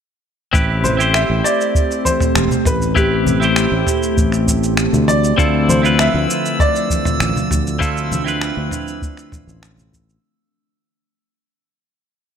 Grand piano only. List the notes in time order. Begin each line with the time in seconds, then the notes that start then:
0.84 C5
1.14 E5
1.44 D5
2.05 C5
2.67 B4
2.97 G4
5.08 D5
5.69 C5
6.00 E5
6.60 D5